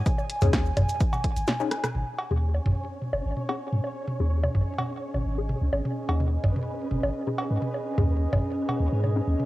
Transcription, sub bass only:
X:1
M:4/4
L:1/16
Q:1/4=127
K:G#m
V:1 name="Sub bass" clef=bass
z3 D,,2 z G,,, z4 G,,, z4 | G,,, z2 D,,2 z G,,, z3 F,,, G,,, z3 G,, | z3 D,,2 z G,,, z4 G,,, G,,,2 z C,, | G,,, z2 D,,2 z G,,, z3 F,,, G,,, z3 G,, |
z3 D,,2 z G,,, z3 D,, G,,2 z D,, z |]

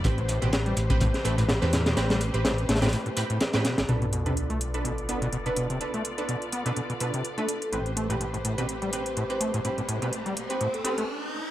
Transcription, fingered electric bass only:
X:1
M:4/4
L:1/16
Q:"Swing 16ths" 1/4=125
K:Am
V:1 name="Fingered electric bass" clef=bass
A,,,3 A,,,3 A,,,3 z A,,,3 E,,3 | A,,,3 A,,,3 A,,,2 z8 | B,,,16- | B,,,16 |
A,,,16- | A,,,12 z4 |]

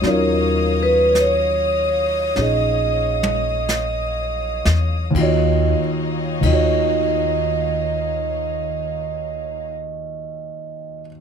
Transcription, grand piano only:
X:1
M:4/4
L:1/16
Q:"Swing" 1/4=40
K:Ebm
V:1 name="Grand piano"
[G,DEFd]8 [DEA]8 | [E,,E,FGd] z2 [E,,E,FGd]12- [E,,E,FGd] |]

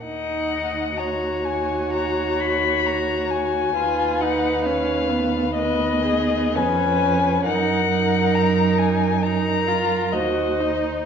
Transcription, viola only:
X:1
M:4/4
L:1/8
Q:1/4=65
K:Ebm
V:1 name="Viola"
E2 G6 | F E D C C2 D2 | [K:Ebdor] E E3 E F G E |]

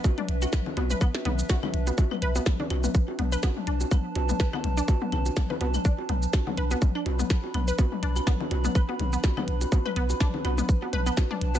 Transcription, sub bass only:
X:1
M:4/4
L:1/8
Q:"Swing 16ths" 1/4=124
K:Bm
V:1 name="Sub bass" clef=bass
z B,,, z B,,, z B,,, z B,,, | z B,,, z B,,, z B,,, z B,,, | z B,,, z B,,, z B,,, z B,,, | z B,,, z B,,, z B,,, z B,,, |
z B,,, z B,,, z B,,, z B,,, | z B,,, z B,,, z B,,, z B,,, |]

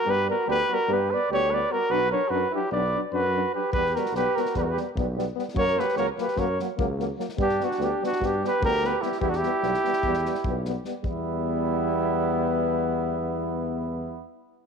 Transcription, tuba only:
X:1
M:9/8
L:1/8
Q:3/8=98
K:none
V:1 name="Tuba" clef=bass
G,,2 D,, z G,,2 D,,3 | B,,,2 ^F,, z B,,,2 F,,3 | E,,2 B,,, z E,,2 B,,,3 | ^F,,2 ^C,, z F,,2 C,,3 |
G,,2 D,, z G,,2 D,,3 | E,,2 B,,, z E,,2 B,,,3 | E,,8- E,,- | E,,8- E,, |]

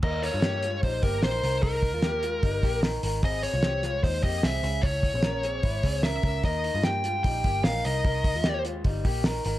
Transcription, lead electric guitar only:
X:1
M:4/4
L:1/8
Q:1/4=150
K:Cphr
V:1 name="Lead electric guitar"
e d3 c B c2 | B6 z2 | e d3 c e _f2 | d6 _f2 |
e2 g2 g2 f e- | e3 z4 z |]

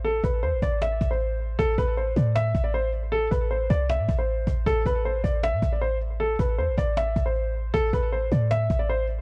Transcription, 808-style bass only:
X:1
M:4/4
L:1/16
Q:1/4=156
K:Am
V:1 name="808-style bass" clef=bass
A,,,2 A,,,2 E,, A,,, A,,,4 A,,,6 | A,,,2 A,,,4 A,,4 A,,,6- | A,,,2 A,,,4 C,,3 A,, A,,,4 A,,,2 | A,,,2 A,,,4 A,,,3 A,, A,,,6- |
A,,,2 A,,,2 E,, A,,, A,,,4 A,,,6 | A,,,2 A,,,4 A,,4 A,,,6 |]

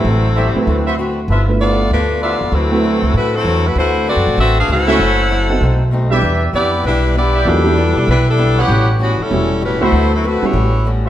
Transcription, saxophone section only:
X:1
M:4/4
L:1/8
Q:"Swing" 1/4=194
K:Dmix
V:1 name="Saxophone section"
[F,CEA]6 z2 | z2 [B,=FAd]2 [A,DFB]2 [B,FAd]2 | [F,CEA]4 [A,EFB] [F,CEA]2 [A,EFB] | [A,EFc]2 [CFAd]2 [CFAe] [D^GB=f] [EAc^f]2- |
[EAcf]6 z2 | z2 [B,EGd]2 [G,DEB]2 [B,EGd]2 | [G,DEA]4 [G,DEB] [G,DEA]2 [E,B,^CG]- | [E,B,^CG] z [E,B,CF] [G,CEA]3 [G,CEB] [A,EF=c]- |
[A,EFc] [F,CEA] [A,EFB] [B,EG^c]3 z2 |]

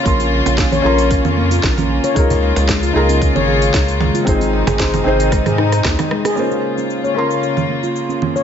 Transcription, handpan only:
X:1
M:4/4
L:1/16
Q:"Swing 16ths" 1/4=114
K:Bbm
V:1 name="Handpan"
B, F z D2 d B4 B, F z D2 d | A4 A, F z D2 d A4 A, F | z E2 A c4 A, A E z2 E A, A | B, F z D2 d B4 B, F z D2 d |]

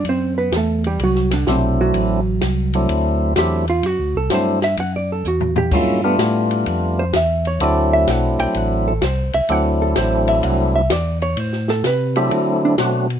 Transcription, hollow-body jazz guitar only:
X:1
M:4/4
L:1/8
Q:"Swing" 1/4=127
K:Dmix
V:1 name="Hollow-body jazz guitar"
[Cc] [B,B] [A,A] [G,G] [F,F] [D,D] [C,C] [F,F]- | [F,F]4 z2 G =F | F A c e (3f d A F G | =F B, z3 c e ^c |
d e f g f A c e | f A c e f e d ^c | c A B G F D z2 |]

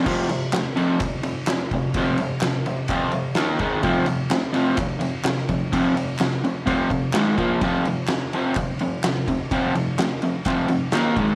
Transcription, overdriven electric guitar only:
X:1
M:4/4
L:1/8
Q:1/4=127
K:Eblyd
V:1 name="Overdriven electric guitar" clef=bass
[F,,C,F,] [F,,C,] [F,,C,] [F,,C,F,] [F,,C,] [F,,C,] [F,,C,] [F,,C,] | [F,,C,F,] [F,,C,] [F,,C,] [F,,C,] [F,,C,F,] [F,,C,] [E,B,E] [_A,,E,_A,] | [F,,C,F,] [F,,C,] [F,,C,] [F,,C,F,] [F,,C,] [F,,C,] [F,,C,] [F,,C,] | [F,,C,F,] [F,,C,] [F,,C,] [F,,C,] [F,,C,F,] [F,,C,] [_A,,E,_A,] [B,,F,B,] |
[F,,C,F,] [F,,C,] [F,,C,] [F,,C,F,] [F,,C,] [F,,C,] [F,,C,] [F,,C,] | [F,,C,F,] [F,,C,] [F,,C,] [F,,C,] [F,,C,F,] [F,,C,] [E,B,E] [_A,,E,_A,] |]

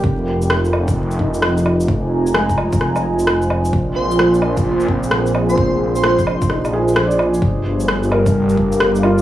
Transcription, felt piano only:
X:1
M:4/4
L:1/16
Q:"Swing 16ths" 1/4=130
K:Fdor
V:1 name="Felt piano"
G2 z8 E6- | E4 A,12- | A,2 z8 C6- | C8 E2 A c d4- |
d4 z2 B8 F2 |]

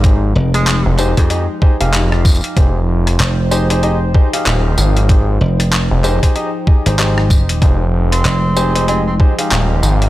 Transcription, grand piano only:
X:1
M:4/4
L:1/16
Q:"Swing 16ths" 1/4=95
K:Fm
V:1 name="Grand piano"
[EGAc] z4 z [EGAc] [EGAc] [EGAe] z [EGAc] [EGAf]4- [EGAf] | [EGAc] z4 z [EGAc] [EGAc] [EGAe] z [EGAc] [EGAf]4- [EGAf] | [EGAc] z4 z [EGAc] [EGAc] [EGAe] z [EGAe] [EGAc] [EGAc]4 | [EGAc] z4 z [EGAc] [EGAc] [EGAe] z [EGAc] [EGAf]4- [EGAf] |]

